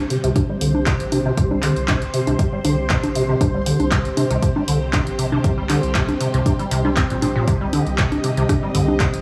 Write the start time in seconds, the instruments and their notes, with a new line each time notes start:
Already playing: string machine C4 G4 C5
0.10 acid bass C3, open hi-hat
0.24 analog synth bass C2, acid bass C3, closed hi-hat
0.36 acid bass C3, kick, closed hi-hat, high conga
0.49 acid bass G3
0.61 analog synth bass C2, acid bass D3, open hi-hat
0.75 high conga
0.86 acid bass C3, kick, clap, closed hi-hat
1.00 analog synth bass A#1, closed hi-hat
1.12 acid bass C3, open hi-hat, high conga
1.25 acid bass C3
1.37 analog synth bass C2, acid bass C3, kick, closed hi-hat
1.51 acid bass G3, high conga
1.62 acid bass D3, clap, open hi-hat
1.76 analog synth bass C2, closed hi-hat
1.88 acid bass C3, kick, clap, closed hi-hat, high conga
2.02 closed hi-hat
2.14 acid bass C3, open hi-hat
2.27 analog synth bass C2, acid bass C3, closed hi-hat, high conga
2.39 acid bass C3, kick, closed hi-hat
2.53 acid bass G3
2.64 analog synth bass C2, acid bass D3, open hi-hat, high conga
2.90 acid bass C3, kick, clap, closed hi-hat
3.03 analog synth bass A#1, closed hi-hat, high conga
3.15 acid bass C3, open hi-hat
3.29 acid bass C3
3.41 analog synth bass C2, acid bass C3, kick, closed hi-hat, high conga
3.54 acid bass G3
3.66 acid bass D3, open hi-hat
3.80 analog synth bass C2, closed hi-hat, high conga
3.91 acid bass C3, kick, clap, closed hi-hat
4.05 closed hi-hat
4.17 acid bass C3, open hi-hat, high conga
4.30 analog synth bass C2, acid bass C3, closed hi-hat
4.42 acid bass C3, kick, closed hi-hat
4.56 acid bass G3, high conga
4.68 analog synth bass C2, acid bass D3, open hi-hat
4.93 acid bass C3, kick, clap, closed hi-hat, high conga
5.07 analog synth bass A#1, closed hi-hat
5.19 acid bass C3, open hi-hat
5.32 acid bass C3, high conga
5.44 analog synth bass C2, acid bass C3, kick, closed hi-hat
5.58 acid bass G3
5.69 acid bass D3, clap, open hi-hat, high conga
5.83 analog synth bass C2, closed hi-hat
5.95 acid bass C3, kick, clap, closed hi-hat
6.09 closed hi-hat, high conga
6.20 acid bass C3, open hi-hat
6.34 analog synth bass C2, acid bass C3, closed hi-hat
6.46 acid bass C3, kick, closed hi-hat, high conga
6.59 acid bass G3, closed hi-hat
6.71 analog synth bass C2, acid bass C3, open hi-hat
6.85 acid bass G3, high conga
6.96 acid bass C4, kick, clap, closed hi-hat
7.10 analog synth bass A#1, acid bass A#2, closed hi-hat
7.22 acid bass A#2, open hi-hat, high conga
7.36 acid bass A#2
7.48 analog synth bass C2, acid bass C3, string machine D#5, kick, closed hi-hat
7.61 acid bass G3
7.73 acid bass D3, open hi-hat, high conga
7.87 analog synth bass C2, closed hi-hat
7.98 acid bass C3, kick, clap, closed hi-hat
8.12 closed hi-hat, high conga
8.24 acid bass C3, open hi-hat
8.37 analog synth bass C2, acid bass C3, closed hi-hat
8.49 acid bass C3, kick, cross-stick, closed hi-hat, high conga
8.63 acid bass G3
8.75 analog synth bass C2, acid bass D3, mid tom, open hi-hat
8.88 high conga
9.00 acid bass C3, kick, clap, closed hi-hat
9.14 analog synth bass A#1, closed hi-hat